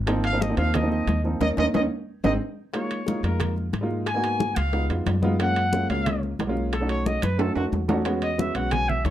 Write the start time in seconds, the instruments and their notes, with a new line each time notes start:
Already playing: upright bass G#1
0.06 grand piano F3 A#3 C4 D#4, high bongo, high conga, high timbale
0.24 trumpet F5, high bongo, high conga, high timbale
0.32 grand piano F3 A#3 C4 D#4
0.41 trumpet D#5, high bongo, high conga
0.49 grand piano F3 A#3 C4 D#4
0.57 upright bass D#2, grand piano F3 A#3 C4 D#4, trumpet F5, high bongo, high conga, high timbale
0.73 grand piano F3 A#3 C4 D#4, trumpet D#5, high bongo, high conga, low conga, high timbale
0.81 grand piano F3 A#3 C4 D#4
0.91 trumpet D#5, high bongo, high conga
1.07 upright bass D#2, high bongo, low bongo, high conga, high timbale
1.24 grand piano F3 A#3 C4 D#4, high conga
1.41 upright bass D#2, grand piano A#3 C#4 D#4, trumpet D#5, low bongo, high conga, high timbale
1.57 upright bass D#2, grand piano A#3 C#4 D#4, trumpet D#5, low bongo, high conga, high timbale
1.74 upright bass D#2, grand piano A#3 C#4 D#4, trumpet D#5, low bongo, high conga, high timbale
2.24 upright bass G#1, grand piano G#3 C4 D#4, trumpet D#5, low bongo, high conga, high timbale
2.73 grand piano G#3 A#3 D#4 F4, trumpet C#5, high bongo, high conga, high timbale
2.90 high bongo, high conga, high timbale
3.07 grand piano G#3 A#3 D#4 F4, high bongo, high conga
3.23 upright bass F2, grand piano G#3 A#3 D#4 F4, trumpet A#4, high bongo, high conga, high timbale
3.40 high bongo, high conga, low conga, high timbale
3.56 high bongo, high conga
3.73 upright bass G#2, high bongo, low bongo, high conga, high timbale
3.81 grand piano G#3 A#3 D#4 F4
3.91 high conga
4.06 trumpet G#5, high bongo, high conga, high timbale
4.14 grand piano A#3 B3 D#4 F#4
4.23 high bongo, high conga, high timbale
4.40 high bongo, high conga
4.56 upright bass C#2, trumpet F5, high conga, high timbale
4.73 grand piano G#3 B3 D#4 F4, high bongo, high conga
4.89 upright bass F2, grand piano G#3 B3 D#4 F4, high bongo, high conga, high timbale
5.06 upright bass F#2, high bongo, low bongo, high conga, high timbale, low timbale
5.22 grand piano G#3 B3 D#4 F4, high conga
5.39 grand piano G#3 A#3 C#4 F4, trumpet F#5, high bongo, high conga, high timbale
5.56 high bongo, high conga, high timbale
5.72 grand piano G#3 A#3 C#4 F4, high bongo, high conga
5.89 upright bass C#2, grand piano G#3 A#3 C#4 F4, trumpet F5, high bongo, high conga, high timbale
6.06 high bongo, high conga, low conga, high timbale
6.23 high bongo, high conga
6.39 upright bass B1, high bongo, low bongo, high conga, high timbale, low timbale
6.47 grand piano G#3 A#3 C#4 F4
6.57 high conga
6.73 trumpet A4, high bongo, high conga, high timbale
6.80 grand piano A3 C#4 D#4 F#4
6.89 trumpet C#5, high bongo, high conga, high timbale
7.06 trumpet D#5, high bongo, high conga
7.22 upright bass F#2, trumpet B4, high bongo, high conga, high timbale
7.38 grand piano A3 C#4 D#4 F#4, trumpet A4, high bongo, high conga, high timbale
7.55 upright bass F2, grand piano A3 C#4 D#4 F#4, trumpet F#4, high bongo, high conga, high timbale
7.72 upright bass E2, high bongo, low bongo, high conga
7.88 grand piano A3 C#4 D#4 F#4, high conga, low timbale
8.05 grand piano G#3 B3 C#4 F#4, high bongo, high conga, high timbale
8.22 trumpet D#5, high bongo, high conga, high timbale
8.38 grand piano G#3 B3 C#4 F#4, trumpet E5, high bongo, high conga
8.54 upright bass B1, grand piano G#3 B3 C#4 F#4, trumpet F#5, high bongo, high conga, high timbale
8.71 trumpet G#5, high bongo, high conga, low conga, high timbale
8.89 trumpet E5, high bongo, high conga, low conga
9.05 upright bass D#2, trumpet C#5, high bongo, low bongo, high conga, high timbale